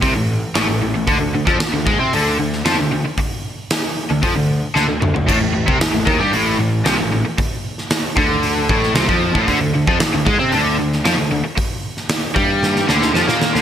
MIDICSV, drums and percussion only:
0, 0, Header, 1, 2, 480
1, 0, Start_track
1, 0, Tempo, 524476
1, 994, Time_signature, 4, 2, 24, 8
1, 12462, End_track
2, 0, Start_track
2, 0, Title_t, "Drums"
2, 22, Note_on_c, 9, 36, 98
2, 24, Note_on_c, 9, 46, 56
2, 114, Note_off_c, 9, 36, 0
2, 116, Note_off_c, 9, 46, 0
2, 504, Note_on_c, 9, 46, 55
2, 508, Note_on_c, 9, 38, 117
2, 596, Note_off_c, 9, 46, 0
2, 599, Note_off_c, 9, 38, 0
2, 984, Note_on_c, 9, 36, 83
2, 985, Note_on_c, 9, 46, 45
2, 1075, Note_off_c, 9, 36, 0
2, 1077, Note_off_c, 9, 46, 0
2, 1345, Note_on_c, 9, 36, 99
2, 1353, Note_on_c, 9, 38, 32
2, 1437, Note_off_c, 9, 36, 0
2, 1445, Note_off_c, 9, 38, 0
2, 1464, Note_on_c, 9, 46, 60
2, 1468, Note_on_c, 9, 38, 127
2, 1555, Note_off_c, 9, 46, 0
2, 1559, Note_off_c, 9, 38, 0
2, 1708, Note_on_c, 9, 36, 107
2, 1799, Note_off_c, 9, 36, 0
2, 1951, Note_on_c, 9, 46, 61
2, 2043, Note_off_c, 9, 46, 0
2, 2315, Note_on_c, 9, 38, 29
2, 2407, Note_off_c, 9, 38, 0
2, 2428, Note_on_c, 9, 46, 57
2, 2432, Note_on_c, 9, 38, 103
2, 2520, Note_off_c, 9, 46, 0
2, 2523, Note_off_c, 9, 38, 0
2, 2907, Note_on_c, 9, 36, 87
2, 2907, Note_on_c, 9, 46, 48
2, 2998, Note_off_c, 9, 46, 0
2, 2999, Note_off_c, 9, 36, 0
2, 3390, Note_on_c, 9, 46, 69
2, 3394, Note_on_c, 9, 38, 112
2, 3482, Note_off_c, 9, 46, 0
2, 3485, Note_off_c, 9, 38, 0
2, 3869, Note_on_c, 9, 46, 56
2, 3870, Note_on_c, 9, 36, 102
2, 3961, Note_off_c, 9, 46, 0
2, 3962, Note_off_c, 9, 36, 0
2, 4355, Note_on_c, 9, 38, 62
2, 4447, Note_off_c, 9, 38, 0
2, 4596, Note_on_c, 9, 45, 97
2, 4687, Note_off_c, 9, 45, 0
2, 4722, Note_on_c, 9, 43, 78
2, 4813, Note_off_c, 9, 43, 0
2, 4837, Note_on_c, 9, 36, 90
2, 4843, Note_on_c, 9, 49, 81
2, 4843, Note_on_c, 9, 55, 69
2, 4929, Note_off_c, 9, 36, 0
2, 4934, Note_off_c, 9, 49, 0
2, 4934, Note_off_c, 9, 55, 0
2, 5198, Note_on_c, 9, 36, 103
2, 5289, Note_off_c, 9, 36, 0
2, 5316, Note_on_c, 9, 46, 59
2, 5320, Note_on_c, 9, 38, 123
2, 5408, Note_off_c, 9, 46, 0
2, 5411, Note_off_c, 9, 38, 0
2, 5556, Note_on_c, 9, 36, 94
2, 5647, Note_off_c, 9, 36, 0
2, 5794, Note_on_c, 9, 46, 58
2, 5886, Note_off_c, 9, 46, 0
2, 6274, Note_on_c, 9, 46, 55
2, 6277, Note_on_c, 9, 38, 112
2, 6365, Note_off_c, 9, 46, 0
2, 6369, Note_off_c, 9, 38, 0
2, 6757, Note_on_c, 9, 36, 96
2, 6758, Note_on_c, 9, 46, 51
2, 6849, Note_off_c, 9, 36, 0
2, 6850, Note_off_c, 9, 46, 0
2, 7122, Note_on_c, 9, 38, 31
2, 7213, Note_off_c, 9, 38, 0
2, 7234, Note_on_c, 9, 46, 61
2, 7237, Note_on_c, 9, 38, 114
2, 7325, Note_off_c, 9, 46, 0
2, 7329, Note_off_c, 9, 38, 0
2, 7475, Note_on_c, 9, 36, 108
2, 7566, Note_off_c, 9, 36, 0
2, 7715, Note_on_c, 9, 46, 62
2, 7807, Note_off_c, 9, 46, 0
2, 7957, Note_on_c, 9, 36, 100
2, 8048, Note_off_c, 9, 36, 0
2, 8083, Note_on_c, 9, 38, 29
2, 8174, Note_off_c, 9, 38, 0
2, 8193, Note_on_c, 9, 46, 54
2, 8197, Note_on_c, 9, 38, 114
2, 8285, Note_off_c, 9, 46, 0
2, 8288, Note_off_c, 9, 38, 0
2, 8317, Note_on_c, 9, 36, 98
2, 8409, Note_off_c, 9, 36, 0
2, 8558, Note_on_c, 9, 36, 90
2, 8649, Note_off_c, 9, 36, 0
2, 8674, Note_on_c, 9, 46, 49
2, 8677, Note_on_c, 9, 36, 78
2, 8766, Note_off_c, 9, 46, 0
2, 8769, Note_off_c, 9, 36, 0
2, 9037, Note_on_c, 9, 36, 102
2, 9129, Note_off_c, 9, 36, 0
2, 9151, Note_on_c, 9, 46, 58
2, 9155, Note_on_c, 9, 38, 113
2, 9243, Note_off_c, 9, 46, 0
2, 9247, Note_off_c, 9, 38, 0
2, 9395, Note_on_c, 9, 36, 96
2, 9486, Note_off_c, 9, 36, 0
2, 9629, Note_on_c, 9, 46, 56
2, 9721, Note_off_c, 9, 46, 0
2, 10000, Note_on_c, 9, 38, 30
2, 10092, Note_off_c, 9, 38, 0
2, 10114, Note_on_c, 9, 46, 60
2, 10117, Note_on_c, 9, 38, 102
2, 10205, Note_off_c, 9, 46, 0
2, 10209, Note_off_c, 9, 38, 0
2, 10592, Note_on_c, 9, 46, 53
2, 10594, Note_on_c, 9, 36, 87
2, 10684, Note_off_c, 9, 46, 0
2, 10686, Note_off_c, 9, 36, 0
2, 10954, Note_on_c, 9, 38, 31
2, 11046, Note_off_c, 9, 38, 0
2, 11066, Note_on_c, 9, 46, 65
2, 11070, Note_on_c, 9, 38, 115
2, 11158, Note_off_c, 9, 46, 0
2, 11161, Note_off_c, 9, 38, 0
2, 11312, Note_on_c, 9, 36, 91
2, 11403, Note_off_c, 9, 36, 0
2, 11559, Note_on_c, 9, 38, 68
2, 11650, Note_off_c, 9, 38, 0
2, 11677, Note_on_c, 9, 38, 51
2, 11769, Note_off_c, 9, 38, 0
2, 11796, Note_on_c, 9, 38, 79
2, 11887, Note_off_c, 9, 38, 0
2, 11918, Note_on_c, 9, 38, 66
2, 12010, Note_off_c, 9, 38, 0
2, 12038, Note_on_c, 9, 38, 84
2, 12130, Note_off_c, 9, 38, 0
2, 12160, Note_on_c, 9, 38, 69
2, 12252, Note_off_c, 9, 38, 0
2, 12278, Note_on_c, 9, 38, 100
2, 12369, Note_off_c, 9, 38, 0
2, 12405, Note_on_c, 9, 38, 78
2, 12462, Note_off_c, 9, 38, 0
2, 12462, End_track
0, 0, End_of_file